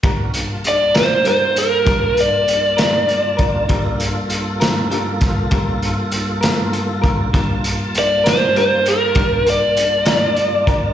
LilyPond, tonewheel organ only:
\new Staff \with { instrumentName = "Tonewheel organ" } { \time 12/8 \key g \minor \tempo 4. = 66 <aes, b fis' bes'>8 <g, bes f' a''>1~ <g, bes f' a''>4. | <g, bes f' a'>1. | <g, bes f' a''>1. | }